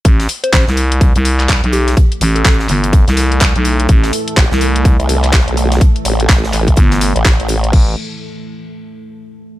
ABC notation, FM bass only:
X:1
M:4/4
L:1/16
Q:"Swing 16ths" 1/4=125
K:Am
V:1 name="FM bass" clef=bass
A,,,2 z2 A,,, C,,4 C,,4 B,,,3 | z2 A,,,2 A,,,2 G,,,3 C,,4 B,,,3 | A,,,2 z3 C,,4 z6 z | z8 G,,,3 z4 z |
A,,,2 z12 z2 |]